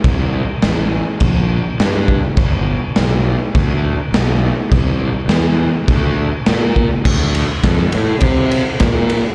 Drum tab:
CC |x-x-x-x-|x-x-x-x-|x-x-x-x-|x-------|
RD |--------|--------|--------|-xxxxxxx|
SD |--o---o-|--o---o-|--o---o-|--o---o-|
BD |o---o--o|o---o---|o---o--o|o-o-o-o-|